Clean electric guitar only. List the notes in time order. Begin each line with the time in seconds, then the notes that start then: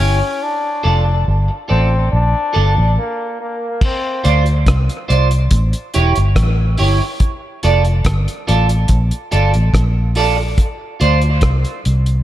0.00 E4 G4 C#5
0.83 F4 A4 D5
1.48 muted clean electric guitar stroke
1.68 F4 A4 D5
2.53 F4 A4 D5
4.24 F4 C5 D5
5.08 F4 C5 D5
5.94 E4 G4 C#5
6.78 E4 G4 C#5
7.01 muted clean electric guitar stroke
7.63 F4 A4 D5
8.47 F4 A4 D5
9.31 F4 A4 D5
10.16 F4 A4 D5
10.37 muted clean electric guitar stroke
11.00 F4 C5 D5